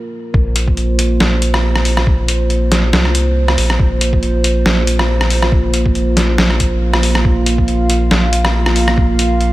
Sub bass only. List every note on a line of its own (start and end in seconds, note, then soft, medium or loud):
0.34 1.19 A#1 loud
1.21 2.05 A#1 loud
2.07 2.92 A#1 medium
2.93 3.56 C2 loud
3.58 3.78 A#1 loud
3.79 4.64 A#1 medium
4.66 5.51 A#1 loud
5.52 6.37 A#1 loud
6.38 7.23 A#1 loud
7.25 8.10 A#1 medium
8.11 8.96 A#1 loud
8.97 9.53 A#1 loud